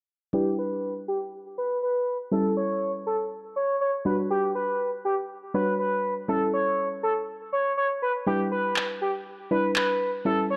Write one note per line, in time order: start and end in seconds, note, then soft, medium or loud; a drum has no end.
0.33 2.28 G3 medium
0.33 2.28 D4 medium
0.33 2.28 E4 medium
0.33 0.54 G4 loud
0.33 2.28 B4 medium
0.59 0.94 B4 medium
1.08 1.18 G4 medium
1.58 1.78 B4 medium
1.83 2.18 B4 medium
2.31 4.02 G3 medium
2.31 4.02 C#4 medium
2.31 4.02 E4 medium
2.31 2.52 A4 medium
2.31 4.02 A4 medium
2.57 2.92 C#5 medium
3.07 3.16 A4 medium
3.56 3.76 C#5 medium
3.81 3.91 C#5 medium
4.05 5.51 G3 medium
4.05 5.51 D4 medium
4.05 5.51 F#4 medium
4.05 4.16 B4 medium
4.05 5.52 B4 medium
4.30 4.50 G4 loud
4.55 4.90 B4 medium
5.05 5.15 G4 medium
5.54 6.27 G3 soft
5.54 6.29 D4 soft
5.54 6.29 F#4 soft
5.54 5.74 B4 medium
5.54 6.29 C#5 medium
5.79 6.14 B4 medium
6.28 8.23 G3 medium
6.28 8.23 C#4 medium
6.28 8.23 E4 medium
6.28 6.49 A4 medium
6.28 8.23 A4 medium
6.54 6.88 C#5 medium
7.03 7.13 A4 medium
7.53 7.72 C#5 medium
7.77 7.87 C#5 medium
8.02 8.12 B4 medium
8.26 9.48 G3 medium
8.26 9.48 D4 medium
8.26 9.49 E4 medium
8.26 8.47 G4 loud
8.26 9.49 B4 medium
8.52 8.87 B4 medium
8.76 clap loud
9.01 9.11 G4 medium
9.51 10.24 G3 soft
9.51 10.25 D4 soft
9.51 10.24 E4 soft
9.51 9.71 B4 medium
9.51 10.26 B4 medium
9.76 10.11 B4 medium
9.76 clap loud
10.25 10.57 G3 medium
10.25 10.57 C#4 medium
10.25 10.57 E4 medium
10.25 10.45 A4 medium
10.25 10.57 A4 medium
10.50 10.57 C#5 medium